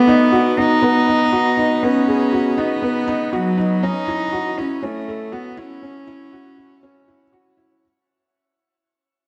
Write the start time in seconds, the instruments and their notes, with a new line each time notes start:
Already playing: cello B3, felt piano B3
0.08 felt piano D#4
0.32 felt piano F#4
0.58 felt piano D#4, cello D#4
0.82 felt piano B3
1.07 felt piano D#4
1.32 felt piano F#4
1.57 felt piano D#4
1.83 felt piano B3, cello C#4
2.08 felt piano G#4
2.33 felt piano F#4
2.57 cello B3, felt piano D#4
2.82 felt piano B3
3.08 felt piano D#4
3.33 cello F#3, felt piano F#4
3.58 felt piano D#4
3.83 felt piano C#4, cello D#4
4.08 felt piano E4
4.33 felt piano F#4
4.58 cello C#4, felt piano E4
4.83 cello A3, felt piano C#4
5.08 felt piano A4
5.32 cello B3, felt piano F#4
5.57 cello C#4, felt piano E4
5.83 felt piano C#4
6.07 felt piano E4
6.33 felt piano F#4
6.58 felt piano E4
6.83 felt piano C#4
7.08 felt piano E4
7.33 felt piano F#4
7.57 felt piano E4